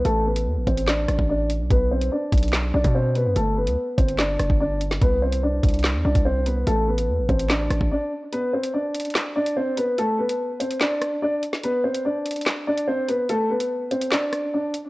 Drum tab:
HH |x-----x-----x-x-----x-------x---|x-----x-----xxxx------x-----x---|x-----x-----x-x-----x-------x---|x-----x-----xxxx------x-----x---|
CP |----------------x---------------|----------------x---------------|----------------x---------------|----------------x---------------|
SD |----------------o---r-----------|----------------o---------------|----------------o---r---------o-|----------------o---------------|
BD |------------o---------o---------|o-----------o---------o---------|------------o---------o---------|o-----------o---------o---------|

HH |x-----x-----x-x-----x-----------|x-----x-----xxxx------x-----x---|x-----x-----x-x-----x-------x---|x-----x-----xxxx------x-----x---|
CP |----------------x---------------|----------------x---------------|----------------x---------------|----------------x---------------|
SD |----------------o---r-----------|----------------o---------------|----------------o---r---------o-|----------------o---------------|
BD |------------o---------o---------|--------------------------------|--------------------------------|--------------------------------|

HH |x-----x-----x-x-----x-------x---|
CP |----------------x---------------|
SD |----------------o---r-----------|
BD |--------------------------------|